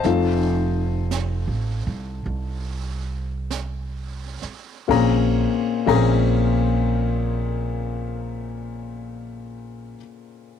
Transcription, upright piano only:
0.00 4.88 A3 soft
0.00 3.48 C5 medium
0.00 3.48 D#5 medium
0.00 3.46 A5 medium
0.05 4.87 C4 soft
0.05 4.89 D#4 soft
0.05 4.89 F4 medium
4.88 5.47 A#2 soft
4.88 5.48 A#3 soft
4.88 5.48 C4 soft
4.88 5.48 C#4 soft
4.88 5.49 G#4 medium
4.88 5.45 A#5 medium
5.86 9.95 A#2 medium
5.86 9.96 A#3 soft
5.86 9.96 C4 medium
5.86 9.97 C#4 medium
5.86 9.98 G#4 medium
5.86 9.93 A#5 medium

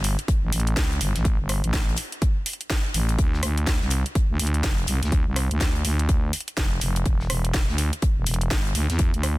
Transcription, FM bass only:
0.00 0.16 G1 loud
0.43 0.51 A1 loud
0.52 0.75 A1 loud
0.77 0.99 C#2 loud
1.01 1.13 G1 loud
1.16 1.37 A1 loud
1.40 1.62 G1 medium
1.64 1.96 A1 loud
2.94 3.17 A1 loud
3.19 3.41 D2 loud
3.43 3.79 D2 medium
3.82 4.04 C2 loud
4.30 4.38 D2 loud
4.39 4.62 D2 medium
4.64 4.86 F1 loud
4.88 5.00 C2 loud
5.03 5.24 D2 loud
5.27 5.49 C2 medium
5.51 5.83 D2 loud
5.85 6.32 D2 loud
6.57 6.80 F1 loud
6.82 7.04 F1 loud
7.06 7.28 E1 loud
7.30 7.66 E1 medium
7.69 7.91 D2 loud
8.17 8.25 E1 medium
8.27 8.49 E1 loud
8.51 8.74 G1 loud
8.75 8.87 D2 loud
8.90 9.12 E2 loud
9.14 9.36 D2 medium

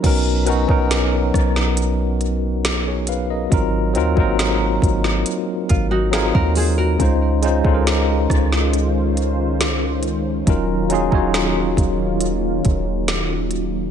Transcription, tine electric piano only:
0.02 0.42 F#3 medium
0.02 0.43 B3 medium
0.02 0.43 C#4 medium
0.02 0.44 D#4 medium
0.06 0.44 A#4 loud
0.45 0.66 F#3 medium
0.45 0.67 B3 medium
0.45 0.67 C#4 medium
0.45 0.67 D#4 medium
0.49 0.68 F#4 loud
0.67 2.25 F#3 medium
0.67 2.25 B3 medium
0.67 2.26 C#4 medium
0.67 2.26 D#4 medium
0.71 2.27 A#4 loud
2.87 3.08 G#4 medium
2.87 3.07 C#5 medium
3.09 3.29 B4 medium
3.09 3.29 F5 medium
3.30 3.53 A#4 medium
3.30 3.71 D#5 medium
3.50 3.90 F#3 medium
3.50 3.90 C4 medium
3.50 3.91 D#4 medium
3.50 3.91 F4 medium
3.54 3.92 A#4 medium
3.94 4.14 F#3 medium
3.94 4.15 C4 medium
3.94 4.15 D#4 medium
3.94 4.16 F4 medium
3.94 4.16 A#4 loud
4.16 5.73 F#3 medium
4.16 4.23 A#3 medium
4.16 5.74 D#4 medium
4.16 5.74 F4 medium
4.20 5.77 C4 medium
4.20 5.75 A#4 medium
6.11 6.90 F#3 medium
6.11 6.91 C4 medium
6.11 6.91 D#4 medium
6.11 6.92 F4 medium
6.11 6.92 A#4 loud
6.98 7.38 G#3 medium
6.98 7.39 C#4 medium
6.98 7.39 D#4 medium
6.98 7.39 F4 medium
7.02 7.40 C5 medium
7.42 7.62 G#3 medium
7.42 7.62 C#4 medium
7.42 7.63 D#4 medium
7.42 7.63 F4 medium
7.46 7.64 C5 loud
7.64 9.21 G#3 medium
7.64 9.21 C#4 medium
7.64 9.22 D#4 medium
7.64 9.23 F4 medium
7.68 7.73 A4 medium
7.74 9.26 A#4 loud
10.46 10.86 F#3 medium
10.46 10.86 C#4 medium
10.46 10.87 D#4 medium
10.46 10.87 F4 medium
10.50 10.88 A#4 medium
10.89 11.10 F#3 medium
10.89 11.10 C#4 medium
10.89 11.11 D#4 medium
10.89 11.11 F4 medium
10.94 11.12 G#4 loud
11.11 12.68 F#3 medium
11.11 12.69 C#4 medium
11.11 12.69 D#4 medium
11.11 12.70 F4 medium
11.15 12.70 C#5 loud

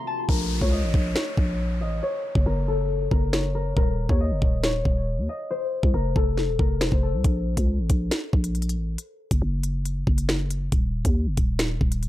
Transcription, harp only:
0.00 0.13 A#5 medium
0.00 0.67 C6 medium
0.07 0.35 A5 medium
0.29 2.41 A#4 loud
0.61 1.15 C#5 medium
0.72 1.81 D#5 medium
1.16 2.02 C#5 medium
1.81 3.59 D#5 medium
2.03 3.33 C#5 loud
2.46 2.74 A#4 medium
2.68 3.18 A4 medium
3.12 3.55 A#4 medium
3.33 4.09 C#5 medium
3.55 3.76 A#4 medium
3.77 5.89 A#4 loud
4.09 4.63 C#5 medium
4.20 5.29 D#5 medium
4.64 5.57 C#5 medium
5.29 7.07 D#5 medium
5.51 6.81 C5 loud
5.94 6.22 A#4 medium
6.16 6.65 A4 medium
6.59 7.09 A#4 medium
6.81 8.79 C5 medium
7.03 9.22 A4 medium

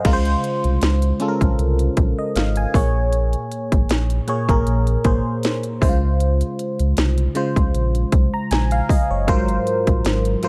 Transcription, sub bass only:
0.05 0.35 C#2 loud
0.64 0.78 C2 loud
0.82 1.12 C#2 loud
1.41 1.55 A#1 loud
1.58 1.89 C2 loud
1.97 2.14 A#1 medium
2.35 2.66 G#1 loud
2.74 3.35 A#1 loud
3.72 3.86 G#1 loud
3.89 4.20 A#1 medium
4.49 4.63 G#1 medium
4.66 4.97 A#1 loud
5.05 5.21 G#1 medium
5.82 6.43 C#2 loud
6.79 6.93 C#2 loud
6.97 7.28 C2 medium
7.56 7.70 C#2 loud
7.74 8.05 A#1 loud
8.13 8.29 C2 medium
8.51 8.81 A#1 loud
9.10 9.29 F#1 medium
9.28 9.58 G#1 loud
9.87 10.01 A#1 medium
10.05 10.35 G#1 loud

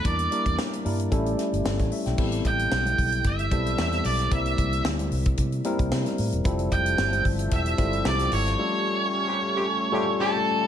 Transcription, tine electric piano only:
0.04 0.23 G3 medium
0.04 0.23 A#3 medium
0.04 0.23 D4 medium
0.04 0.23 E4 medium
0.04 0.24 A#4 medium
0.31 0.68 G3 medium
0.31 0.68 A#3 medium
0.31 0.68 D4 medium
0.31 0.68 E4 medium
0.31 0.68 A#4 medium
0.85 1.10 G3 medium
0.85 1.12 A#3 medium
0.85 1.12 D4 medium
0.85 1.11 E4 medium
0.85 1.12 A#4 medium
1.11 1.97 G3 loud
1.11 1.97 A3 medium
1.11 1.98 C#4 medium
1.11 1.98 E4 medium
1.11 1.64 A4 loud
1.65 1.79 A4 medium
1.80 1.91 C#5 medium
1.92 2.06 E5 medium
2.06 2.32 G5 medium
2.18 2.90 G3 medium
2.18 2.90 B3 medium
2.18 2.90 C4 medium
2.18 2.91 E4 medium
2.18 2.91 A4 medium
3.51 4.05 G3 medium
3.51 4.05 B3 medium
3.51 4.05 C4 medium
3.51 4.05 E4 medium
3.51 4.06 A4 medium
4.32 5.04 G3 medium
4.32 5.04 A#3 medium
4.32 5.04 C4 medium
4.32 5.04 E4 medium
4.32 5.04 A#4 medium
5.64 6.18 G3 medium
5.64 6.18 A#3 medium
5.64 6.19 C4 medium
5.64 6.19 E4 medium
5.64 6.19 A#4 loud
6.45 7.17 G3 medium
6.45 7.17 C4 medium
6.45 7.17 E4 medium
6.45 7.17 F4 medium
6.45 7.18 A4 medium
7.78 8.32 G3 medium
7.78 8.32 C4 medium
7.78 8.32 E4 medium
7.78 8.32 F4 medium
7.78 8.32 A4 medium
8.58 9.31 G3 medium
8.58 9.31 A3 medium
8.58 9.31 C#4 medium
8.58 9.31 F4 medium
8.58 9.31 A4 medium
9.91 10.45 G3 medium
9.91 10.45 A3 medium
9.91 10.46 C#4 medium
9.91 10.46 F4 medium
9.91 10.46 A4 medium

